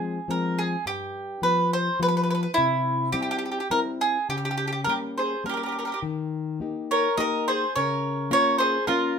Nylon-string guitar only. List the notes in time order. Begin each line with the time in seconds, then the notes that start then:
Already playing: F3 G#3 C4
0.28 F3 G#3 C4
0.85 G2
1.42 F3 G3 B3
2.00 F3 G3 B3
2.58 C3
3.13 G3 C4 E4
3.70 G3 C4 E4
4.29 C#3
4.87 G3 A#3 C#4
5.44 G3 A#3 C#4
6.02 D#3
6.60 A#3 D#4 G4
7.18 A#3 D#4 G4
7.76 C#3
8.31 A#3 C#4 F4
8.87 A#3 C#4 F4